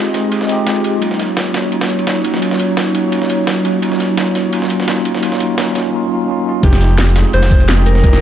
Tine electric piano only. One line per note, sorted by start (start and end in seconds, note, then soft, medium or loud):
0.00 0.13 G#3 medium
0.00 0.14 C4 medium
0.00 0.14 D#4 medium
0.00 0.15 F4 medium
0.00 0.52 G4 loud
0.00 0.16 G#4 medium
0.13 0.21 G#3 medium
0.13 0.22 C4 medium
0.13 0.22 D#4 medium
0.13 0.22 F4 medium
0.13 0.23 G#4 medium
0.46 0.99 G#3 medium
0.46 0.99 C4 medium
0.46 1.00 D#4 medium
0.51 1.01 F4 medium
0.51 1.01 G4 loud
0.99 1.51 F#3 medium
0.99 1.52 A#3 medium
0.99 1.53 C#4 medium
1.03 1.53 D#4 medium
1.03 1.54 F4 medium
1.53 1.62 F#3 medium
1.53 1.62 A#3 medium
1.53 1.62 C#4 medium
1.53 1.63 D#4 medium
1.53 1.63 F#4 medium
1.69 2.21 F#3 medium
1.69 2.22 A#3 medium
1.69 2.23 C#4 medium
1.73 2.23 D#4 medium
1.73 2.24 F4 medium
2.23 2.32 F#3 medium
2.23 2.32 A#3 medium
2.23 2.32 C#4 medium
2.23 2.33 D#4 medium
2.23 2.33 F#4 medium
2.39 2.92 F#3 medium
2.39 2.92 A#3 medium
2.39 2.93 C#4 medium
2.44 2.94 D#4 medium
2.44 2.94 F4 medium
2.93 3.02 F#3 medium
2.93 3.02 A#3 medium
2.93 3.03 C#4 medium
2.93 3.03 D#4 medium
2.93 3.03 F#4 medium
3.09 3.62 F#3 medium
3.09 3.62 A#3 medium
3.09 3.63 C#4 medium
3.14 3.64 D#4 medium
3.14 3.65 F4 medium
3.63 3.72 F#3 medium
3.63 3.72 A#3 medium
3.63 3.73 C#4 medium
3.63 3.73 D#4 medium
3.63 3.73 F#4 medium
3.80 4.13 F#3 medium
3.80 4.15 A#3 medium
3.80 4.16 C#4 medium
3.84 4.17 D#4 medium
3.84 4.18 F4 medium
4.15 4.48 F#3 medium
4.15 4.50 A#3 medium
4.15 4.51 C#4 medium
4.19 4.52 D#4 medium
4.19 4.53 F4 medium
4.50 4.84 F#3 medium
4.50 4.85 A#3 medium
4.50 4.87 C#4 medium
4.54 4.87 D#4 medium
4.54 4.88 F4 medium
4.85 5.19 F#3 medium
4.85 5.20 A#3 medium
4.85 5.22 C#4 medium
4.89 5.22 D#4 medium
4.89 5.23 F4 medium
5.20 5.36 F#3 medium
5.20 5.38 A#3 medium
5.20 5.39 C#4 medium
5.24 5.40 D#4 medium
5.24 5.41 F4 medium
5.38 5.54 F#3 medium
5.38 5.55 A#3 medium
5.38 5.57 C#4 medium
5.42 5.58 D#4 medium
5.42 5.58 F4 medium
5.55 5.72 F#3 medium
5.55 5.73 A#3 medium
5.55 5.74 C#4 medium
5.59 5.75 D#4 medium
5.59 5.76 F4 medium
5.73 5.89 F#3 medium
5.73 5.91 A#3 medium
5.73 5.92 C#4 medium
5.77 5.93 D#4 medium
5.77 5.93 F4 medium
5.90 6.07 F#3 medium
5.90 6.08 A#3 medium
5.90 6.09 C#4 medium
5.95 6.10 D#4 medium
5.95 6.11 F4 medium
6.08 6.24 F#3 medium
6.08 6.26 A#3 medium
6.08 6.27 C#4 medium
6.12 6.28 D#4 medium
6.12 6.28 F4 medium
6.25 6.42 F#3 medium
6.25 6.43 A#3 medium
6.25 6.45 C#4 medium
6.30 6.45 D#4 medium
6.30 6.46 F4 medium
6.43 6.61 F#3 medium
6.43 6.61 A#3 medium
6.43 6.62 C#4 medium
6.47 6.62 D#4 medium
6.47 6.63 F4 medium
6.60 7.13 G#3 medium
6.60 7.13 C4 medium
6.60 7.14 D#4 medium
6.66 7.15 G4 medium
7.15 7.23 G#3 medium
7.15 7.23 C4 medium
7.15 7.24 D#4 medium
7.15 7.24 F4 medium
7.15 7.25 G#4 medium
7.77 7.84 G#3 medium
7.77 7.84 C4 medium
7.77 7.85 D#4 medium
7.77 7.85 F4 medium
7.77 7.86 G4 medium
8.01 8.21 G#3 medium
8.01 8.21 C4 medium
8.01 8.21 D#4 medium
8.05 8.21 F4 medium
8.05 8.21 G4 medium